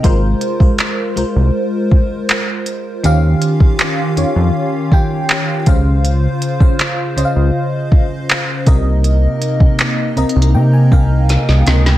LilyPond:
<<
  \new Staff \with { instrumentName = "FM electric piano" } { \time 4/4 \key aes \major \tempo 4 = 80 << { r1 | r1 | r1 | r4. bes''8 g''16 aes''16 g''8 f''16 ees''16 ees''8 | } \\ { <aes f' bes' c''>8 r16 <aes f' bes' c''>8 r16 <aes f' bes' c''>4~ <aes f' bes' c''>16 r4 r16 | <ees des' g' f''>4 r8 <ees des' g' des''>8. r16 <ees des' g' g''>8. r16 <des des' c'' f''>8~ | <des des' c'' f''>8 r16 <des des' c'' f''>8 r16 <des des' c'' ees'' f''>4~ <des des' c'' ees'' f''>16 r8. <c c' bes' ees''>8~ | <c c' bes' ees''>4 r8 <c c' bes' ees''>8. r16 <c c' bes' f''>8. r16 <c c' bes' ees''>16 r16 | } >> }
  \new Staff \with { instrumentName = "Analog synth pad" } { \time 4/4 \key aes \major <aes f' bes' c''>1 | <ees des' f' g'>2.~ <ees des' f' g'>8 <des f' c''>8~ | <des f' c''>2.~ <des f' c''>8 <c bes ees'>8~ | <c bes ees'>1 | }
  \new Staff \with { instrumentName = "Analog synth bass" } { \clef bass \time 4/4 \key aes \major aes,,8 r4 c,16 c,16 r2 | ees,8 r4 f,16 f,16 r4. des,8~ | des,8 r4 des,16 des,16 r4. c,8~ | c,8 r4 c,16 c,16 c8 c,8. c,16 des,8 | }
  \new DrumStaff \with { instrumentName = "Drums" } \drummode { \time 4/4 <hh bd>8 hh16 bd16 <hc hh>8 hh8 r8 bd8 <hc hh>8 hh8 | hh8 hh16 bd16 <hc hh>8 hh8 r8 bd8 <hc hh>8 <hh bd>8 | hh8 hh16 bd16 <hc hh>8 hh8 r8 bd8 <hc hh>8 <hh bd>8 | hh8 hh16 bd16 \tuplet 3/2 { <hc hh>16 r16 r16 hh16 hh16 hh16 } r8 bd8 <hh sn>16 sn16 <hh sn>16 sn16 | }
>>